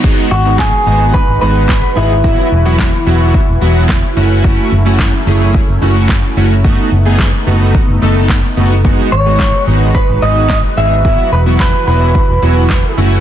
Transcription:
<<
  \new Staff \with { instrumentName = "Clean electric guitar" } { \time 4/4 \key e \major \tempo 4 = 109 r8 fis'8 gis'4 b'8 b'4 e'8~ | e'2.~ e'8 r8 | r1 | r1 |
r8 cis''4 r8 b'8 dis''8 dis''8 e''8~ | e''8 b'8 b'8 b'2 r8 | }
  \new Staff \with { instrumentName = "Analog polysynth" } { \time 4/4 \key e \major <gis b dis' fis'>8 r16 <gis b dis' fis'>8 r16 <gis b dis' fis'>8 r8 <gis b dis' fis'>8 r8 <gis b dis' gis'>16 r16 | <fis b e' fis'>8 r16 <fis b e' fis'>8 r16 <fis b e' fis'>8 r8 <fis b e' fis'>8 r8 <a cis' e' fis'>8~ | <a cis' e' fis'>8 r16 <a cis' e' fis'>8 r16 <a cis' e' gis'>8 r8 <a cis' e' fis'>8 r8 <a cis' e' fis'>16 r16 | <a b dis' fis'>8 r16 <a b dis' gis'>8 r16 <a b dis' fis'>8 r8 <a b dis' a'>8 r8 <a b dis' fis'>16 r16 |
<gis b dis' fis'>8 r16 <gis b dis' fis'>8 r16 <gis b dis' fis'>8 r8 <gis b dis' fis'>8 r8 <gis b dis' gis'>16 r16 | <fis b e' fis'>8 r16 <fis b e' fis'>8 r16 <fis b e' fis'>8 r8 <fis b e' fis'>8 r8 <a cis' e' fis'>8 | }
  \new Staff \with { instrumentName = "Analog synth pad" } { \time 4/4 \key e \major << { <fis' b'>1~ | <fis' b'>2.~ <fis' b'>8 a8~ | a1 | <b dis'>1 |
<fis' b'>1~ | <fis' b'>2.~ <fis' b'>8 a'8 | } \\ { <gis dis'>1 | <e e'>2.~ <e e'>8 <fis cis'>8~ | <fis cis'>1 | a1 |
<gis dis'>1 | <e e'>2.~ <e e'>8 <fis cis'>8 | } >> }
  \new Staff \with { instrumentName = "Fingered electric bass" } { \clef bass \time 4/4 \key e \major r8 gis,,4 gis,,8. gis,,16 gis,,4 gis,,8~ | gis,,8 e,,4 e,,8. e,,16 e,,4 fis,,8~ | fis,,8 fis,,4 fis,,8. fis,,16 fis,,4 fis,,8~ | fis,,8 fis,,4 fis,,8. fis,,16 fis,,4 fis,,8~ |
fis,,8 gis,,4 gis,,8. gis,,16 gis,,4 gis,,8~ | gis,,8 e,,4 e,,8. e,,16 e,,4 fis,,8 | }
  \new DrumStaff \with { instrumentName = "Drums" } \drummode { \time 4/4 <cymc bd>4 <hc bd sn>4 bd4 <hc bd sn>4 | bd4 <hc bd sn>4 bd4 <hc bd sn>4 | bd4 <hc bd sn>4 bd4 <hc bd sn>4 | bd4 <hc bd sn>4 bd4 <hc bd sn>4 |
bd4 <hc bd sn>4 bd4 <hc bd sn>4 | bd4 <hc bd sn>4 bd4 <hc bd sn>4 | }
>>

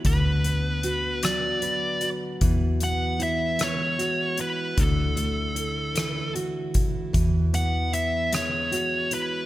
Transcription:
<<
  \new Staff \with { instrumentName = "Lead electric guitar" } { \time 6/8 \key e \mixolydian \tempo 4. = 51 b'4. d''4 r8 | r8 fis''8 e''8 cis''4 b'8 | a'2 r4 | r8 fis''8 e''8 cis''4 b'8 | }
  \new Staff \with { instrumentName = "Steel-string acoustic guitar" } { \time 6/8 \key e \mixolydian d8 b8 fis'8 fis8 b'8 fis'8 | e8 b8 e'8 gis8 fis'8 e'8 | d8 a8 e'8 e8 fis'8 e'8 | e8 b8 e'8 gis8 fis'8 e'8 | }
  \new Staff \with { instrumentName = "Fingered electric bass" } { \clef bass \time 6/8 \key e \mixolydian d,2. | e,2. | d,2. | e,2. | }
  \new DrumStaff \with { instrumentName = "Drums" } \drummode { \time 6/8 <hh bd>8 hh8 hh8 <hh ss>8 hh8 hh8 | <hh bd>8 hh8 hh8 <hh ss>8 <hh ss>8 hh8 | <hh bd>8 hh8 hh8 <hh ss>8 hh8 <hh bd>8 | <hh bd>8 hh8 hh8 <hh ss>8 <hh ss>8 hh8 | }
>>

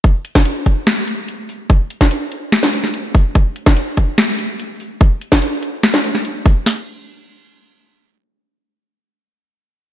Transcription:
\new DrumStaff \with { instrumentName = "Drums" } \drummode { \time 4/4 \tempo 4 = 145 <hh bd>8 hh16 <bd sn>16 hh8 <hh bd>8 <hh sn>8 hh8 hh8 hho8 | <hh bd>8 hh16 <bd sn>16 hh8 hh8 <hh sn>16 sn16 hh16 sn16 hh8 <hho bd>8 | <hh bd>8 hh16 <bd sn>16 hh8 <hh bd>8 <hh sn>8 hh8 hh8 hho8 | <hh bd>8 hh16 <bd sn>16 hh8 hh8 <hh sn>16 sn16 hh16 sn16 hh8 <hho bd>8 |
<cymc sn>4 r4 r4 r4 | r4 r4 r4 r4 | }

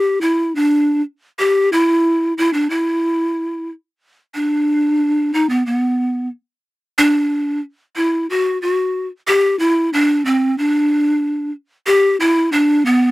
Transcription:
\new Staff \with { instrumentName = "Pan flute" } { \time 2/4 \key e \minor \tempo 4 = 91 g'16 e'8 d'8. r8 | g'8 e'4 e'16 d'16 | e'4. r8 | r8 d'4. |
dis'16 b16 b4 r8 | r8 d'4 r8 | e'8 fis'8 fis'8. r16 | g'8 e'8 d'8 c'8 |
d'4. r8 | g'8 e'8 d'8 b8 | }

